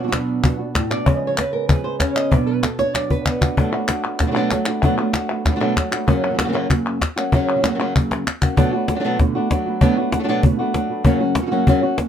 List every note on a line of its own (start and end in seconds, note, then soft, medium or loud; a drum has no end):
0.00 0.89 B2 medium
0.00 0.06 F#3 medium
0.00 0.78 B3 medium
0.00 0.07 B3 medium
0.00 0.07 D4 medium
0.00 0.75 D5 medium
0.04 0.11 F#3 medium
0.04 0.12 B3 medium
0.04 0.08 F#4 medium
0.08 0.42 B2 medium
0.08 0.12 D4 medium
0.08 0.12 F#4 medium
0.12 0.43 F#3 medium
0.12 0.43 B3 medium
0.12 0.44 D4 medium
0.12 0.44 F#4 medium
0.12 cajon slap medium
0.12 clap medium
0.28 cajon slap soft
0.43 0.59 B2 medium
0.43 0.59 F#3 medium
0.43 0.59 B3 medium
0.43 0.59 D4 medium
0.43 0.58 F#4 medium
0.43 cajon bass loud
0.43 clap medium
0.59 0.74 B3 soft
0.59 0.74 D4 soft
0.59 0.74 F#4 soft
0.75 0.91 A2 medium
0.75 muted nylon-string guitar stroke medium
0.75 cajon bass medium
0.75 cajon slap medium
0.75 clap loud
0.90 1.07 B2 medium
0.90 1.07 B3 soft
0.90 1.06 D4 soft
0.90 1.06 F#4 medium
0.90 1.07 D5 loud
0.90 clap medium
1.06 2.30 C#3 medium
1.06 1.37 C#3 medium
1.06 1.38 F3 medium
1.06 1.38 G#3 medium
1.06 1.38 B3 medium
1.06 1.38 G#4 medium
1.06 1.17 C#5 medium
1.06 cajon bass loud
1.17 1.27 D#5 medium
1.27 1.38 C#5 medium
1.38 1.52 B4 medium
1.38 muted nylon-string guitar stroke medium
1.38 cajon slap loud
1.38 clap loud
1.53 1.68 G#3 soft
1.53 1.69 B3 soft
1.53 1.69 G#4 soft
1.53 1.68 A#4 loud
1.68 1.84 F3 soft
1.68 1.84 G#3 soft
1.68 1.85 B3 soft
1.68 1.83 G#4 medium
1.68 1.85 B4 loud
1.68 cajon bass loud
1.68 clap medium
1.84 2.17 G#3 soft
1.84 2.16 B3 soft
1.84 2.14 G#4 medium
1.84 1.99 C5 loud
1.99 2.30 C#4 medium
1.99 2.15 C#5 loud
1.99 cajon bass medium
1.99 cajon slap loud
1.99 clap medium
2.16 2.32 G#3 soft
2.16 2.32 B3 soft
2.16 2.31 G#4 soft
2.16 2.31 D#5 loud
2.16 clap medium
2.31 3.56 B2 medium
2.31 2.62 B2 medium
2.31 2.63 F#3 medium
2.31 2.63 B3 medium
2.31 2.63 D4 medium
2.31 2.64 F#4 medium
2.31 2.47 D5 medium
2.31 cajon bass loud
2.46 2.62 B4 medium
2.63 2.79 A4 medium
2.63 muted nylon-string guitar stroke medium
2.63 cajon slap loud
2.63 clap medium
2.79 2.94 B3 soft
2.79 2.94 D4 soft
2.79 2.94 F#4 soft
2.79 2.95 C#5 loud
2.79 cajon slap medium
2.95 3.10 F#3 soft
2.95 3.10 B3 medium
2.95 3.10 D4 medium
2.95 3.09 F#4 medium
2.95 3.10 D5 loud
2.95 cajon slap medium
2.95 clap medium
3.10 3.42 B3 soft
3.10 3.42 D4 soft
3.10 3.40 F#4 medium
3.10 3.26 B4 loud
3.10 cajon bass medium
3.26 3.55 B3 medium
3.26 cajon bass medium
3.26 clap loud
3.41 3.58 B3 soft
3.41 3.57 D4 soft
3.41 3.57 F#4 medium
3.41 3.55 F#4 soft
3.41 cajon bass medium
3.41 clap medium
3.57 3.72 B2 medium
3.57 3.73 D3 medium
3.57 3.73 F#3 medium
3.57 3.73 A3 medium
3.57 3.73 A3 loud
3.57 3.73 B3 medium
3.57 3.72 D4 medium
3.57 3.71 F#4 loud
3.57 3.72 F#4 medium
3.57 cajon bass medium
3.72 3.89 A3 soft
3.72 3.88 A3 soft
3.72 3.89 B3 soft
3.72 3.88 D4 soft
3.72 3.87 F#4 medium
3.72 3.88 F#4 medium
3.88 4.19 A3 soft
3.88 4.19 D4 medium
3.88 4.19 F#4 medium
3.88 muted nylon-string guitar stroke medium
3.88 cajon slap loud
3.88 clap medium
4.05 4.20 A3 soft
4.05 4.20 B3 soft
4.05 4.20 F#4 soft
4.19 4.35 B2 medium
4.19 4.35 D3 medium
4.19 4.36 A3 medium
4.19 4.36 B3 medium
4.19 4.34 F#4 medium
4.19 muted nylon-string guitar stroke medium
4.19 cajon bass loud
4.19 cajon slap soft
4.19 clap medium
4.27 4.30 F#3 medium
4.27 4.30 A3 medium
4.27 4.31 D4 medium
4.27 4.31 F#4 medium
4.31 4.35 F#3 medium
4.31 4.35 A3 medium
4.31 4.35 D4 medium
4.31 4.36 F#4 medium
4.31 4.51 F#4 soft
4.35 4.51 B2 medium
4.35 4.50 F#3 medium
4.35 4.51 A3 medium
4.35 4.51 A3 soft
4.35 4.51 B3 soft
4.35 4.51 D4 loud
4.35 4.51 F#4 medium
4.50 4.66 F#3 medium
4.50 4.67 A3 medium
4.50 4.66 D4 medium
4.50 4.65 F#4 medium
4.50 muted nylon-string guitar stroke soft
4.50 cajon slap medium
4.50 clap medium
4.66 4.83 A3 soft
4.66 4.83 B3 soft
4.66 4.82 D4 medium
4.66 4.82 F#4 medium
4.66 clap medium
4.82 4.98 B2 medium
4.82 4.98 D3 medium
4.82 4.98 F#3 medium
4.82 4.98 A3 medium
4.82 4.99 B3 medium
4.82 4.98 D4 medium
4.82 4.97 F#4 loud
4.82 4.98 F#4 medium
4.82 cajon bass medium
4.98 5.14 A3 medium
4.98 5.14 A3 soft
4.98 5.14 B3 soft
4.98 5.14 D4 medium
4.98 5.13 F#4 medium
4.98 5.14 F#4 soft
5.13 5.44 A3 soft
5.13 5.45 D4 medium
5.13 5.45 F#4 medium
5.13 muted nylon-string guitar stroke medium
5.13 cajon slap loud
5.13 clap medium
5.30 5.45 A3 soft
5.30 5.45 B3 soft
5.30 5.45 F#4 soft
5.30 cajon slap soft
5.45 5.61 B2 medium
5.45 5.61 D3 medium
5.45 5.61 A3 medium
5.45 5.61 B3 medium
5.45 5.60 F#4 medium
5.45 muted nylon-string guitar stroke medium
5.45 cajon bass loud
5.45 cajon slap soft
5.45 clap medium
5.51 5.55 F#3 medium
5.51 5.55 A3 medium
5.51 5.55 D4 medium
5.51 5.56 F#4 medium
5.56 5.59 F#3 medium
5.56 5.60 A3 medium
5.56 5.60 D4 medium
5.56 5.60 F#4 medium
5.60 5.76 B2 medium
5.60 5.75 F#3 medium
5.60 5.75 A3 medium
5.60 5.76 A3 soft
5.60 5.76 B3 soft
5.60 5.76 D4 medium
5.60 5.76 F#4 medium
5.60 5.76 F#4 soft
5.76 5.91 F#3 medium
5.76 5.92 A3 medium
5.76 5.91 D4 medium
5.76 muted nylon-string guitar stroke medium
5.76 cajon bass medium
5.76 cajon slap medium
5.76 clap medium
5.91 6.07 A3 soft
5.91 6.08 A3 soft
5.91 6.08 B3 soft
5.91 6.08 D4 soft
5.91 6.07 F#4 medium
5.91 6.07 F#4 soft
5.91 clap medium
6.07 6.38 F#2 medium
6.07 6.38 C#3 medium
6.07 6.38 F#3 medium
6.07 6.39 A#3 loud
6.07 6.38 C#4 loud
6.07 6.37 F#4 loud
6.07 muted nylon-string guitar stroke medium
6.07 cajon bass medium
6.30 6.33 C#3 soft
6.30 6.33 F#3 soft
6.30 6.33 A#3 soft
6.30 6.34 C#4 soft
6.30 6.34 F#4 soft
6.34 6.38 C#3 medium
6.34 6.38 F#3 medium
6.34 6.38 A#3 medium
6.34 6.39 C#4 medium
6.34 6.39 F#4 medium
6.38 6.54 F#2 medium
6.38 6.54 C#3 medium
6.38 6.43 C#3 medium
6.38 6.54 F#3 medium
6.38 6.42 F#3 medium
6.38 6.54 A#3 medium
6.38 6.42 A#3 medium
6.38 6.41 C#4 medium
6.38 6.53 C#4 medium
6.38 6.40 F#4 medium
6.38 6.53 F#4 medium
6.38 cajon slap loud
6.38 clap medium
6.44 6.47 C#3 medium
6.44 6.47 F#3 medium
6.44 6.48 A#3 medium
6.44 6.48 C#4 medium
6.44 6.49 F#4 medium
6.48 6.52 C#3 medium
6.48 6.52 F#3 medium
6.48 6.52 A#3 medium
6.48 6.52 C#4 medium
6.48 6.53 F#4 medium
6.53 6.68 F#2 medium
6.53 6.68 C#3 medium
6.53 6.69 F#3 medium
6.53 6.69 F#3 soft
6.53 6.69 A#3 medium
6.53 6.70 A#3 soft
6.53 6.69 C#4 medium
6.53 6.70 C#4 soft
6.53 6.69 F#4 soft
6.53 6.69 F#4 loud
6.69 7.00 F#2 medium
6.69 7.00 C#3 medium
6.69 7.01 F#3 medium
6.69 7.01 A#3 medium
6.69 7.01 C#4 medium
6.69 7.01 F#4 medium
6.69 muted nylon-string guitar stroke medium
6.69 cajon bass loud
6.69 clap medium
7.01 muted nylon-string guitar stroke medium
7.01 cajon bass medium
7.01 cajon slap medium
7.01 clap medium
7.16 7.33 F#3 soft
7.16 7.33 A#3 soft
7.16 7.32 C#4 soft
7.16 7.32 F#4 medium
7.16 clap medium
7.32 7.63 F#2 medium
7.32 7.64 C#3 loud
7.32 7.64 F#3 loud
7.32 7.64 A#3 medium
7.32 7.63 C#4 loud
7.32 7.62 F#4 loud
7.32 muted nylon-string guitar stroke medium
7.32 cajon bass loud
7.56 7.59 C#3 soft
7.56 7.59 F#3 soft
7.56 7.59 A#3 soft
7.56 7.60 C#4 soft
7.56 7.60 F#4 medium
7.60 7.63 C#3 medium
7.60 7.64 F#3 medium
7.60 7.64 A#3 medium
7.60 7.64 C#4 medium
7.60 7.64 F#4 medium
7.60 7.66 F#4 medium
7.60 cajon slap loud
7.64 7.79 F#2 medium
7.64 7.79 C#3 medium
7.64 7.69 C#3 medium
7.64 7.80 F#3 medium
7.64 7.68 F#3 soft
7.64 7.80 A#3 medium
7.64 7.68 A#3 medium
7.64 7.67 C#4 soft
7.64 7.79 C#4 medium
7.64 7.78 F#4 medium
7.64 7.71 F#4 medium
7.64 clap medium
7.70 7.74 C#3 medium
7.70 7.74 F#3 medium
7.70 7.74 A#3 medium
7.70 7.75 C#4 medium
7.70 7.75 F#4 medium
7.75 7.78 C#3 medium
7.75 7.79 F#3 medium
7.75 7.79 A#3 medium
7.75 7.79 C#4 medium
7.75 7.80 F#4 medium
7.79 7.94 F#2 medium
7.79 7.94 C#3 medium
7.79 7.94 F#3 medium
7.79 7.95 F#3 soft
7.79 7.95 A#3 medium
7.79 7.95 A#3 soft
7.79 7.95 C#4 soft
7.79 7.95 C#4 medium
7.79 7.95 F#4 soft
7.79 7.95 F#4 medium
7.79 cajon slap soft
7.95 8.26 F#2 medium
7.95 8.26 C#3 medium
7.95 8.26 F#3 medium
7.95 8.26 A#3 medium
7.95 8.27 C#4 medium
7.95 8.27 F#4 medium
7.95 muted nylon-string guitar stroke medium
7.95 cajon bass medium
7.95 clap medium
8.11 cajon slap medium
8.27 muted nylon-string guitar stroke medium
8.27 cajon slap medium
8.27 clap medium
8.42 8.56 F#3 soft
8.42 8.57 A#3 medium
8.42 8.57 C#4 medium
8.42 8.57 F#4 medium
8.42 cajon bass medium
8.42 clap medium
8.57 8.72 B2 medium
8.57 8.73 D3 medium
8.57 8.72 F#3 loud
8.57 8.73 A3 medium
8.57 8.73 B3 medium
8.57 8.72 D4 loud
8.57 8.72 F#4 loud
8.57 8.72 F#4 medium
8.57 cajon bass loud
8.73 8.89 A3 medium
8.73 8.88 A3 soft
8.73 8.88 B3 medium
8.73 8.88 D4 medium
8.73 8.88 F#4 medium
8.88 8.95 A3 medium
8.88 8.95 D4 medium
8.88 8.95 F#4 medium
8.88 muted nylon-string guitar stroke medium
8.88 cajon slap loud
8.95 8.99 F#3 medium
8.95 8.99 A3 medium
8.95 8.99 D4 medium
8.95 9.00 F#4 medium
9.00 9.03 F#3 medium
9.00 9.03 A3 medium
9.00 9.04 D4 medium
9.00 9.04 F#4 medium
9.04 9.18 B2 loud
9.04 9.19 F#3 medium
9.04 9.18 A3 loud
9.04 9.20 A3 soft
9.04 9.20 B3 soft
9.04 9.19 D4 loud
9.04 9.19 F#4 soft
9.04 9.20 F#4 loud
9.19 9.35 B2 medium
9.19 9.35 D3 medium
9.19 9.35 A3 medium
9.19 9.35 B3 medium
9.19 9.34 F#4 medium
9.19 muted nylon-string guitar stroke medium
9.19 cajon bass loud
9.19 cajon slap soft
9.35 9.50 A3 soft
9.35 9.50 B3 soft
9.35 9.51 D4 medium
9.35 9.50 F#4 medium
9.50 9.80 F#3 medium
9.50 9.81 A3 medium
9.50 9.81 D4 medium
9.50 9.82 F#4 medium
9.50 muted nylon-string guitar stroke medium
9.50 cajon bass medium
9.50 cajon slap loud
9.66 9.81 A3 soft
9.66 9.82 B3 soft
9.66 9.81 F#4 medium
9.66 cajon slap soft
9.81 9.96 B2 loud
9.81 9.96 B2 medium
9.81 9.97 D3 medium
9.81 9.96 F#3 loud
9.81 9.97 A3 loud
9.81 9.97 A3 medium
9.81 9.97 B3 medium
9.81 9.97 D4 loud
9.81 9.96 F#4 loud
9.81 9.96 F#4 medium
9.81 cajon bass loud
9.97 10.13 A3 medium
9.97 10.13 A3 soft
9.97 10.13 B3 medium
9.97 10.12 D4 medium
9.97 10.11 F#4 medium
9.97 10.12 F#4 medium
10.12 10.18 A3 medium
10.12 10.19 D4 medium
10.12 10.19 F#4 medium
10.12 muted nylon-string guitar stroke medium
10.12 cajon slap loud
10.19 10.23 F#3 medium
10.19 10.23 A3 medium
10.19 10.23 D4 medium
10.19 10.23 F#4 medium
10.24 10.28 F#3 medium
10.24 10.28 A3 medium
10.24 10.28 D4 medium
10.24 10.28 F#4 medium
10.28 10.42 B2 loud
10.28 10.43 F#3 medium
10.28 10.43 A3 loud
10.28 10.44 A3 soft
10.28 10.44 B3 soft
10.28 10.43 D4 loud
10.28 10.43 F#4 medium
10.28 10.44 F#4 loud
10.28 cajon slap soft
10.43 10.59 B2 medium
10.43 10.59 D3 medium
10.43 10.59 A3 medium
10.43 10.58 B3 medium
10.43 10.57 F#4 medium
10.43 muted nylon-string guitar stroke medium
10.43 cajon bass loud
10.58 10.73 A3 soft
10.58 10.74 A3 medium
10.58 10.73 B3 medium
10.58 10.74 D4 medium
10.58 10.74 F#4 soft
10.58 10.74 F#4 medium
10.74 11.04 F#3 medium
10.74 11.05 A3 medium
10.74 11.05 D4 medium
10.74 11.05 F#4 medium
10.74 muted nylon-string guitar stroke medium
10.74 cajon slap loud
10.89 11.05 A3 soft
10.89 11.05 B3 soft
10.89 11.04 F#4 soft
11.04 11.20 F#2 medium
11.04 11.35 F#2 medium
11.04 11.20 C#3 medium
11.04 11.35 C#3 medium
11.04 11.36 F#3 medium
11.04 11.20 F#3 loud
11.04 11.20 A#3 loud
11.04 11.36 A#3 medium
11.04 11.35 C#4 medium
11.04 11.20 C#4 medium
11.04 11.34 F#4 medium
11.04 11.19 F#4 loud
11.04 cajon bass loud
11.20 11.35 F#3 medium
11.20 11.35 A#3 medium
11.20 11.36 C#4 medium
11.20 11.35 F#4 medium
11.35 11.41 C#3 soft
11.35 11.41 F#3 medium
11.35 11.39 A#3 soft
11.35 11.41 C#4 soft
11.35 11.38 F#4 soft
11.35 11.42 F#4 medium
11.35 muted nylon-string guitar stroke medium
11.35 cajon slap loud
11.42 11.45 C#3 medium
11.42 11.45 F#3 medium
11.42 11.46 A#3 medium
11.42 11.46 C#4 medium
11.42 11.46 F#4 medium
11.46 11.50 C#3 medium
11.46 11.50 F#3 medium
11.46 11.51 A#3 medium
11.46 11.50 C#4 medium
11.46 11.51 F#4 medium
11.51 11.66 F#2 medium
11.51 11.66 C#3 medium
11.51 11.66 F#3 medium
11.51 11.67 F#3 medium
11.51 11.66 A#3 medium
11.51 11.67 A#3 medium
11.51 11.67 C#4 medium
11.51 11.67 F#4 medium
11.67 11.82 F#2 medium
11.67 11.82 C#3 loud
11.67 11.83 F#3 medium
11.67 11.83 A#3 loud
11.67 11.82 C#4 loud
11.67 11.82 F#4 loud
11.67 muted nylon-string guitar stroke medium
11.67 cajon bass loud
11.82 11.96 F#3 soft
11.82 11.98 F#3 medium
11.82 11.97 A#3 soft
11.82 11.98 A#3 medium
11.82 11.97 C#4 medium
11.82 11.98 C#4 medium
11.82 11.97 F#4 medium
11.82 11.98 F#4 medium
11.97 12.08 F#3 soft
11.97 12.08 A#3 medium
11.97 12.08 C#4 medium
11.97 12.08 F#4 medium
11.97 muted nylon-string guitar stroke medium
11.97 cajon slap loud